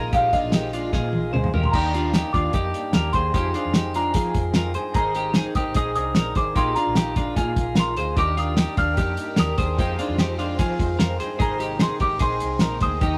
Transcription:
Already playing: A#1 D#3 G#3 A#3 D#4 F4 G#4 A#4 D#5
0.13 A#1 A#2 F3 G#3 D#4 F4 G4 F5, kick, closed hi-hat
0.33 G#3 D4 D#4 F4 D#5, kick, closed hi-hat
0.42 A#1
0.52 F3 G#3 D#4 G4, snare, closed hi-hat
0.57 F4
0.73 G#3 D4 D#4 F4, closed hi-hat
0.93 A#2 F3 G#3 D#4 F4 G#4, kick, snare
1.13 A#1 G#3 D#4 F4, high tom
1.32 D2 F3 G#3 D#4 F4 G#4 C5, mid tom
1.44 mid tom
1.51 D#2 G#3 D#4 F4 A#4, floor tom
1.55 G4
1.64 C6, floor tom
1.72 D#2 D#3 A#3 D4 D#4 G4 A#4 D5 A#5, kick, crash
1.92 A#3 D4 F4 G4, closed hi-hat
2.12 D#3 A#3 D4 D#4 G4, snare, closed hi-hat
2.31 D#2 A#3 D4 F4 G4 D6, kick, closed hi-hat
2.52 F2 D#3 A#3 D4 D#4 G4, kick, closed hi-hat
2.73 G2 A#3 D4 G4, closed hi-hat
2.93 D#2 D#3 A#3 D4 G4 A#4, snare, closed hi-hat
3.13 D#2 D4 G4 G#4 C5 C6, kick, closed hi-hat
3.17 A#3
3.33 F2 C3 D#3 G#3 C4 D#4 F4 G4 G#4 C5, kick, closed hi-hat
3.53 D#3 G#3 C4 D4 F4 G#4, closed hi-hat
3.65 F2
3.73 D#3 G#3 C4 D#4 G4 G#4, snare, closed hi-hat
3.94 D#3 G#3 C4 D4 F4 G#4 A#5, closed hi-hat
4.14 F2 C3 D#3 F3 G#3 C4 F4 G#4, kick, closed hi-hat
4.34 F2 D#3 G#3 C4 G#4, kick, closed hi-hat
4.53 D#3 G#3 C4 F4 G#4 A#4, snare, closed hi-hat
4.73 G2 D#3 G#3 C4 G#4 C5, closed hi-hat
4.94 G#1 G#3 C4 D#4 G#4 A#4 C5 A#5, kick, closed hi-hat
5.14 C4 D#4 G4 A#4, closed hi-hat
5.34 G#3 C4 D#4 G#4, snare, closed hi-hat
5.38 A#4
5.55 G#1 C4 D#4 G4 A#4 D#6, kick, closed hi-hat
5.74 A#1 G#3 C4 D#4 G#4 A#4 D#6, kick, closed hi-hat
5.95 C2 C4 D4 D#4 G#4 A#4 D#6, closed hi-hat
6.14 G#3 C4 D#4 A#4, snare, closed hi-hat
6.35 G#1 C4 D#4 G#4 A#4 C5 D6, kick, closed hi-hat
6.55 A#1 A#2 D#3 G#3 D#4 F4 G4 G#4 A#4 C6, kick, closed hi-hat
6.75 D4 F4 A#5, closed hi-hat
6.87 A#1
6.95 D#3 G#3 D#4 F4 G4 A#4, snare, closed hi-hat
7.16 G#3 D4 F4 A#4, kick, closed hi-hat
7.35 A#2 D#3 G#3 F4 G#4 A#4, kick, closed hi-hat
7.55 A#1 G#3 F4 A#4, kick, closed hi-hat
7.75 D#3 G#3 F4 A#4, snare, closed hi-hat
7.79 C6
7.96 D2 G#3 F4 G#4 A#4 C5, closed hi-hat
8.16 D#2 D#3 A#3 D4 D#4 G4 A#4 D6, kick, closed hi-hat
8.37 D4 F4 G4 A#4 D#6, closed hi-hat
8.57 D#3 D4 D#4 G4 A#4, snare, closed hi-hat
8.77 D#2 D4 F4 G4 A#4 F6, kick, closed hi-hat
8.82 D4
8.97 F2 D#3 D4 D#4 G4 A#4, kick, closed hi-hat
9.17 G2 G4 A#4, closed hi-hat
9.22 D4
9.36 D#2 D#3 D4 G4 A#4 D#6, snare, closed hi-hat
9.41 A#4
9.58 D#2 D4 G4 G#4 A#4 C5 D#6, kick, closed hi-hat
9.78 F2 D#3 F3 G#3 C4 D#4 F4 G4 G#4 C5, kick, closed hi-hat
9.98 D#3 G#3 C4 D4 F4 C5, closed hi-hat
10.09 F2
10.18 D#3 G#3 C4 D#4 G4 C5, snare, closed hi-hat
10.39 D#3 G#3 C4 D4 F4 C5, closed hi-hat
10.59 F2 D#3 F3 G#3 C4 F4 G#4 C5, kick, closed hi-hat
10.79 F2 D#3 G#3 C4 C5, kick, closed hi-hat
10.98 F2 D#3 G#3 C4 F4 A#4 C5, snare, closed hi-hat
11.17 G2 D#3 G#3 C4 G#4 C5, closed hi-hat
11.38 G#1 C3 G#3 C4 D#4 G#4 A#4 C5 A#5, kick, closed hi-hat
11.43 A#3 D#4
11.58 C4 D#4 G4 A#4, closed hi-hat
11.79 G#3 C4 D#4 G#4 A#4 C6, snare, closed hi-hat
12.00 G#1 C4 D#4 G4 A#4 D6, kick, closed hi-hat
12.19 A#1 G#3 C4 D#4 G#4 A#4 C6, kick, closed hi-hat
12.40 C2 C4 D#4 A#4, closed hi-hat
12.59 A#1 G#3 D#4 A#4, snare, closed hi-hat
12.63 C4 A#4
12.81 D2 C4 D#4 G#4 A#4 C5 D#6, kick, closed hi-hat
13.01 D#2 D#3 G3 D#4 G4 A#4 D#5, kick, closed hi-hat

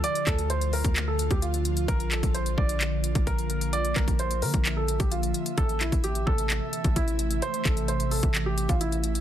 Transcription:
Already playing: D3 F3 F4
0.04 D5, closed hi-hat
0.15 closed hi-hat
0.27 D2 A4, kick, clap, closed hi-hat
0.38 closed hi-hat
0.50 C5, closed hi-hat
0.61 closed hi-hat
0.73 A#4, open hi-hat
0.84 D2, kick, closed hi-hat
0.96 clap, closed hi-hat
1.08 A4
1.19 closed hi-hat
1.31 D2 G4, kick, closed hi-hat
1.42 F4, closed hi-hat
1.54 closed hi-hat
1.65 closed hi-hat
1.77 closed hi-hat
1.88 A#1 A#3 A#4, kick, closed hi-hat
2.00 closed hi-hat
2.12 A4, clap, closed hi-hat
2.23 A#1, kick, closed hi-hat
2.34 C5, closed hi-hat
2.46 closed hi-hat
2.58 A#1 D5, kick
2.69 closed hi-hat
2.81 clap, closed hi-hat
3.04 closed hi-hat
3.15 A#1, kick, closed hi-hat
3.27 A#4, kick, closed hi-hat
3.38 closed hi-hat
3.50 closed hi-hat
3.61 closed hi-hat
3.73 D5 E5, closed hi-hat
3.85 closed hi-hat
3.96 A#1 A#4, kick, clap, closed hi-hat
4.08 kick, closed hi-hat
4.19 C5, closed hi-hat
4.31 closed hi-hat
4.42 D3 A#4, open hi-hat
4.54 A#1, kick, closed hi-hat
4.65 clap, closed hi-hat
4.77 A4
4.88 closed hi-hat
5.00 A#1 G4, kick, closed hi-hat
5.11 F4, closed hi-hat
5.23 closed hi-hat
5.34 closed hi-hat
5.46 closed hi-hat
5.58 A1 C3 E3 A3 A4, kick, closed hi-hat
5.69 closed hi-hat
5.81 A#1 E4, clap, closed hi-hat
5.92 A1, kick, closed hi-hat
6.04 G4, closed hi-hat
6.15 closed hi-hat
6.27 A1 A4, kick
6.38 closed hi-hat
6.50 clap, closed hi-hat
6.73 closed hi-hat
6.84 A1, kick, closed hi-hat
6.96 A1 E4, kick, closed hi-hat
7.08 closed hi-hat
7.19 closed hi-hat
7.31 closed hi-hat
7.42 C5, closed hi-hat
7.54 closed hi-hat
7.65 A1 A4, kick, clap, closed hi-hat
7.77 closed hi-hat
7.88 C5, closed hi-hat
8.00 closed hi-hat
8.11 A4, open hi-hat
8.23 A1, kick, closed hi-hat
8.35 clap, closed hi-hat
8.46 G4
8.58 closed hi-hat
8.69 A1 F4, kick, closed hi-hat
8.81 E4, closed hi-hat
8.92 closed hi-hat
9.04 closed hi-hat
9.15 closed hi-hat

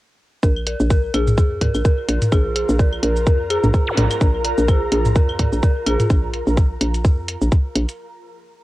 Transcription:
0.43 A#1 F4 A#4, kick, shaker
0.56 A#4, claves
0.67 A#4, closed hi-hat
0.80 A#1, shaker
0.90 A#4, kick, shaker
1.14 A#1 G#4, closed hi-hat, claves
1.27 mid tom, shaker
1.38 F2 G#4, kick, shaker
1.61 A#4, kick, closed hi-hat, mid tom
1.75 A#1, claves, shaker
1.85 A#4, kick, shaker
2.05 A#1 A#4 A#5, closed hi-hat
2.22 closed hi-hat, mid tom, shaker
2.32 A#1 G#4, kick, claves, shaker
2.56 G#4, closed hi-hat
2.69 A#1, shaker
2.79 A#4, kick, shaker
2.93 claves
3.03 A#1 A#4, closed hi-hat
3.16 shaker
3.27 F2 A#4, kick, shaker
3.50 G#4, closed hi-hat, claves
3.64 A#1, mid tom, shaker
3.74 G#4, kick, shaker
3.87 zap
3.97 A#1 A#4, closed hi-hat, mid tom
4.11 closed hi-hat, claves, shaker
4.21 A#1 A#4, kick, shaker
4.45 A#4, closed hi-hat
4.58 A#1, shaker
4.68 G#4, kick, claves, shaker
4.92 A#1 G#4, closed hi-hat
5.05 mid tom, shaker
5.15 F2 A#4, kick, shaker
5.29 claves
5.39 A#4, kick, closed hi-hat, mid tom
5.52 A#1, shaker
5.63 A#4, kick, shaker
5.86 A#1 G#4, closed hi-hat, claves
6.00 closed hi-hat, mid tom, shaker
6.10 A#1, kick, shaker
6.34 closed hi-hat
6.47 A#1, shaker
6.57 kick, shaker
6.81 A#1, closed hi-hat
6.94 closed hi-hat, shaker
7.05 F2, kick, shaker
7.28 closed hi-hat
7.41 A#1, shaker
7.52 kick, shaker
7.75 A#1, closed hi-hat
7.89 closed hi-hat, shaker

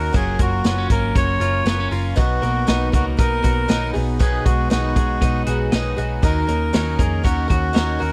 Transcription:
Already playing: D#3 A#3 C#4 D#4 F#4 A#4
0.12 F#1 F#3 C#4 F4 G#4 A#4, kick, closed hi-hat
0.39 F#1 A#3 C#4 F4 F#4 A#4, kick, closed hi-hat
0.64 F#1 F#3 B3 C#4 F4 A#4, snare, closed hi-hat
0.78 C#4
0.90 G#1 A#3 C#4 F4 A#4, kick, closed hi-hat
1.15 F#1 F#3 C#4 F4 A#4 C#5, kick, closed hi-hat
1.40 F#1 C#4 F4 A#4, closed hi-hat
1.66 F#1 F#3 B3 C#4 F4 A#4, snare, closed hi-hat
1.80 C#4
1.91 F#1 C#4 F4 A#4, open hi-hat
2.16 B1 B2 D#3 F#3 B3 D#4 F#4 A#4, kick, closed hi-hat
2.42 B1 F#3 A#3 B3 D#4 A#4, closed hi-hat
2.67 B1 B2 D#3 F#3 B3 D#4 A#4, snare, closed hi-hat
2.92 C#2 F#3 A#3 B3 D#4 F#4 A#4, kick, closed hi-hat
3.17 B1 F#3 B3 D#4 A#4, kick, closed hi-hat
3.42 B1 F#3 B3 D#4 F#4 A#4, kick, closed hi-hat
3.68 B1 B2 D#3 F#3 B3 D#4 A#4, snare, closed hi-hat
3.93 B1 B2 F#3 B3 D#4 G#4, open hi-hat
4.19 B2 D#3 F#3 B3 D#4 G#4, kick, closed hi-hat
4.45 B1 F#3 G#3 B3 D#4 F#4 G#4, kick, closed hi-hat
4.70 B1 B2 D#3 F#3 B3 D#4 F#4 G#4, snare, closed hi-hat
4.96 B1 F#3 G#3 D#4 G#4, kick, closed hi-hat
5.21 B1 F#3 B3 D#4 G#4, kick, closed hi-hat
5.46 B1 F#3 B3 D#4 F#4 G#4, closed hi-hat
5.72 B1 B2 D#3 F#3 B3 D#4 G#4, snare, closed hi-hat
5.97 B1 F#3 B3 D#4 F#4 G#4, closed hi-hat
6.22 D#2 D#3 F#3 C#4 D#4 A#4, kick, closed hi-hat
6.47 D#2 A#3 C#4 D#4 A#4, closed hi-hat
6.73 D#2 D#3 F#3 C#4 D#4 A#4, snare, closed hi-hat
6.98 F2 A#3 C#4 D#4 G#4 A#4, kick, closed hi-hat
7.23 D#2 F#3 C#4 D#4 F#4 A#4, kick, closed hi-hat
7.48 D#2 C#4 D#4 F#4 A#4, kick, closed hi-hat
7.73 D#2 D#3 F#3 C#4 D#4 A#4, snare, closed hi-hat
7.99 D#2 C#4 D#4 F#4 A#4, open hi-hat

